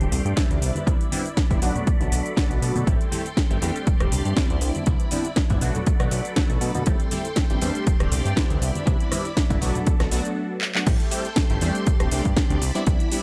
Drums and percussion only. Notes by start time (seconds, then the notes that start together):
0.00 closed hi-hat, high conga, maracas, shaker
0.11 open hi-hat, low conga, maracas, shaker
0.25 closed hi-hat, maracas, shaker
0.37 kick, snare, closed hi-hat, high conga, shaker, maracas
0.51 closed hi-hat, shaker
0.62 open hi-hat, shaker
0.75 closed hi-hat, high conga, maracas, shaker
0.87 kick, closed hi-hat, shaker
1.01 closed hi-hat, shaker
1.11 open hi-hat, high conga, maracas, shaker
1.26 closed hi-hat, shaker, maracas
1.37 kick, snare, closed hi-hat, shaker
1.50 kick, closed hi-hat, low conga, maracas, shaker
1.62 open hi-hat, high conga, maracas, shaker
1.75 closed hi-hat, low conga, shaker, maracas
1.87 kick, closed hi-hat, shaker, maracas
2.01 closed hi-hat, high conga, maracas, shaker
2.12 open hi-hat, maracas, shaker
2.25 closed hi-hat, maracas, shaker
2.37 kick, snare, closed hi-hat, high conga, maracas, shaker
2.51 closed hi-hat, shaker
2.62 open hi-hat, maracas, shaker
2.75 closed hi-hat, high conga, maracas, shaker
2.87 kick, closed hi-hat, shaker
3.01 closed hi-hat, maracas, shaker
3.12 open hi-hat, high conga, maracas, shaker
3.26 closed hi-hat, shaker, maracas
3.37 kick, snare, closed hi-hat, maracas, shaker
3.51 closed hi-hat, shaker
3.62 open hi-hat, high conga, maracas, shaker
3.76 closed hi-hat, maracas, shaker
3.87 kick, closed hi-hat, shaker
4.00 cross-stick, closed hi-hat, high conga, maracas, shaker
4.12 open hi-hat, low conga, maracas, shaker
4.25 closed hi-hat, maracas, shaker
4.36 kick, snare, closed hi-hat, high conga, maracas, shaker
4.50 closed hi-hat, maracas, shaker
4.61 open hi-hat, shaker, maracas
4.75 closed hi-hat, high conga, shaker, maracas
4.86 kick, closed hi-hat, shaker
5.00 closed hi-hat, shaker, maracas
5.11 open hi-hat, high conga, maracas, shaker
5.25 closed hi-hat, shaker, maracas
5.36 kick, snare, closed hi-hat, shaker, maracas
5.50 kick, closed hi-hat, low conga, shaker, maracas
5.61 open hi-hat, high conga, shaker, maracas
5.75 closed hi-hat, low conga, shaker, maracas
5.86 kick, closed hi-hat, maracas, shaker
6.00 cross-stick, closed hi-hat, high conga, shaker, maracas
6.11 open hi-hat, maracas, shaker
6.25 closed hi-hat, maracas, shaker
6.36 kick, snare, closed hi-hat, high conga, shaker, maracas
6.50 closed hi-hat, shaker, maracas
6.61 open hi-hat, shaker, maracas
6.75 closed hi-hat, high conga, shaker, maracas
6.86 kick, closed hi-hat, shaker, maracas
7.00 closed hi-hat, shaker, maracas
7.11 open hi-hat, high conga, maracas, shaker
7.25 closed hi-hat, maracas, shaker
7.36 kick, snare, closed hi-hat, shaker
7.50 closed hi-hat, shaker
7.61 open hi-hat, high conga, maracas, shaker
7.75 closed hi-hat, maracas, shaker
7.87 kick, closed hi-hat, maracas, shaker
8.00 cross-stick, closed hi-hat, high conga, maracas, shaker
8.12 open hi-hat, low conga, maracas, shaker
8.26 closed hi-hat, shaker
8.37 kick, snare, closed hi-hat, high conga, maracas, shaker
8.50 closed hi-hat, shaker
8.62 open hi-hat, maracas, shaker
8.75 closed hi-hat, high conga, maracas, shaker
8.87 kick, closed hi-hat, shaker, maracas
9.00 closed hi-hat, shaker
9.12 cross-stick, open hi-hat, high conga, shaker, maracas
9.25 closed hi-hat, maracas, shaker
9.37 kick, snare, closed hi-hat, shaker
9.50 kick, closed hi-hat, low conga, maracas, shaker
9.62 open hi-hat, high conga, shaker, maracas
9.75 closed hi-hat, low conga, maracas, shaker
9.87 kick, closed hi-hat, shaker, maracas
10.00 cross-stick, snare, closed hi-hat, high conga, shaker, maracas
10.11 open hi-hat, maracas, shaker
10.25 closed hi-hat, shaker, maracas
10.61 clap
10.75 clap
10.87 kick, closed hi-hat, crash, shaker
11.00 closed hi-hat, shaker
11.11 open hi-hat, shaker
11.25 closed hi-hat, shaker
11.36 kick, snare, closed hi-hat, shaker
11.50 closed hi-hat, shaker
11.61 open hi-hat, shaker
11.75 closed hi-hat, shaker
11.87 kick, closed hi-hat, shaker
12.00 cross-stick, closed hi-hat, shaker
12.11 open hi-hat, shaker
12.25 kick, closed hi-hat, shaker
12.37 kick, snare, closed hi-hat, shaker
12.50 closed hi-hat, shaker
12.62 open hi-hat, shaker
12.75 closed hi-hat, shaker
12.87 kick, closed hi-hat, shaker
13.00 closed hi-hat, shaker
13.12 open hi-hat, shaker